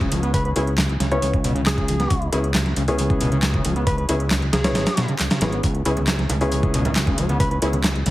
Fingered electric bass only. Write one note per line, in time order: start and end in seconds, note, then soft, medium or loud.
0.12 0.52 C#2 loud
0.56 0.97 C#2 loud
1.00 1.18 C#2 loud
1.22 2.07 C#2 medium
2.11 2.28 C#2 loud
2.32 2.73 C#2 loud
2.77 3.61 C#2 loud
3.65 4.05 C#2 medium
4.09 4.49 C#2 loud
4.53 4.75 C#2 loud
4.75 4.84 G#1 medium
5.41 5.59 G#1 medium
5.64 5.81 C#2 loud
5.85 6.26 C#2 loud
6.30 7.14 C#2 loud
7.18 7.58 C#2 medium
7.62 8.02 C#2 loud
8.06 8.11 C#2 loud